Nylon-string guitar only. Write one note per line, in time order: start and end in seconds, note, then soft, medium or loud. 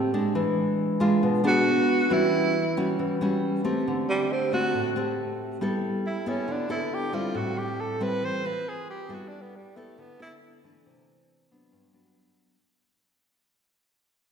0.00 0.33 A2 medium
0.00 0.11 A3 medium
0.00 0.11 C4 medium
0.00 0.11 G4 medium
0.14 0.98 G#3 medium
0.14 0.98 D4 medium
0.35 1.21 E3 medium
1.00 1.41 G#3 medium
1.00 1.42 D4 medium
1.00 1.42 F4 medium
1.23 1.65 B2 medium
1.44 2.07 B3 medium
1.44 2.07 D4 medium
1.44 2.08 G#4 medium
2.10 2.96 E3 medium
2.10 2.55 G3 soft
2.10 2.55 C#4 medium
2.10 2.55 F#4 medium
2.77 3.17 G3 medium
2.77 3.18 C#4 medium
2.77 3.18 F#4 medium
2.99 3.85 E3 medium
3.21 3.61 G3 medium
3.21 3.62 C#4 medium
3.21 3.62 F#4 medium
3.64 4.49 A3 medium
3.64 4.49 C4 medium
3.64 4.49 G4 medium
3.88 4.72 D3 medium
4.52 4.93 A3 medium
4.52 4.93 C4 medium
4.74 5.59 A2 medium
4.96 5.58 A3 medium
4.96 5.58 C4 medium
4.96 5.58 G4 medium
5.61 6.47 G3 medium
5.61 6.05 B3 medium
5.61 6.05 E4 medium
5.61 6.05 A4 medium
6.26 6.67 B3 medium
6.26 6.67 E4 medium
6.26 6.67 A4 medium
6.48 7.33 D3 medium
6.69 7.10 B3 medium
6.69 7.10 E4 medium
6.69 7.11 A4 medium
7.13 7.98 G3 medium
7.13 7.98 C4 medium
7.13 7.98 E4 medium
7.34 8.20 A2 medium
8.00 8.41 G3 medium
8.00 8.41 C4 medium
8.00 8.41 E4 medium
8.23 8.65 E3 medium
8.45 9.07 C4 medium
8.45 9.07 F4 medium
8.45 9.08 A#4 medium
9.09 9.95 G3 medium
9.09 9.53 B3 medium
9.09 9.54 E4 medium
9.09 9.54 A4 medium
9.76 10.16 B3 medium
9.76 10.16 E4 medium
9.76 10.17 A4 medium
9.98 10.83 D3 medium
10.20 10.60 B3 medium
10.20 10.60 E4 medium
10.20 10.60 A4 medium
10.64 11.47 E3 medium
10.64 11.48 A3 medium
10.64 11.48 D4 medium
10.86 11.71 C3 medium
11.51 11.91 F#3 medium
11.51 11.91 B3 medium
11.51 11.91 D4 medium
11.72 12.57 G2 medium
11.93 12.56 F#3 medium
11.93 12.56 B3 medium
11.93 12.56 D4 medium